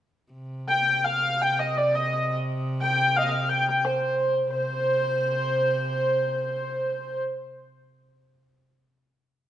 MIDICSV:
0, 0, Header, 1, 3, 480
1, 0, Start_track
1, 0, Key_signature, -3, "minor"
1, 0, Tempo, 500000
1, 9110, End_track
2, 0, Start_track
2, 0, Title_t, "Hurdy-gurdy"
2, 0, Program_c, 0, 110
2, 657, Note_on_c, 0, 79, 99
2, 1002, Note_off_c, 0, 79, 0
2, 1002, Note_on_c, 0, 77, 92
2, 1360, Note_off_c, 0, 77, 0
2, 1360, Note_on_c, 0, 79, 89
2, 1533, Note_off_c, 0, 79, 0
2, 1533, Note_on_c, 0, 75, 77
2, 1705, Note_off_c, 0, 75, 0
2, 1705, Note_on_c, 0, 74, 75
2, 1872, Note_off_c, 0, 74, 0
2, 1872, Note_on_c, 0, 75, 84
2, 2048, Note_off_c, 0, 75, 0
2, 2048, Note_on_c, 0, 75, 65
2, 2266, Note_off_c, 0, 75, 0
2, 2699, Note_on_c, 0, 79, 102
2, 3039, Note_off_c, 0, 79, 0
2, 3039, Note_on_c, 0, 77, 88
2, 3057, Note_on_c, 0, 75, 67
2, 3131, Note_off_c, 0, 75, 0
2, 3154, Note_off_c, 0, 77, 0
2, 3154, Note_on_c, 0, 77, 76
2, 3353, Note_off_c, 0, 77, 0
2, 3353, Note_on_c, 0, 79, 95
2, 3541, Note_off_c, 0, 79, 0
2, 3541, Note_on_c, 0, 79, 78
2, 3695, Note_off_c, 0, 79, 0
2, 3695, Note_on_c, 0, 72, 66
2, 4163, Note_off_c, 0, 72, 0
2, 4318, Note_on_c, 0, 72, 82
2, 6891, Note_off_c, 0, 72, 0
2, 9110, End_track
3, 0, Start_track
3, 0, Title_t, "Viola da gamba"
3, 0, Program_c, 1, 42
3, 307, Note_on_c, 1, 48, 63
3, 4305, Note_off_c, 1, 48, 0
3, 4318, Note_on_c, 1, 48, 60
3, 6921, Note_off_c, 1, 48, 0
3, 9110, End_track
0, 0, End_of_file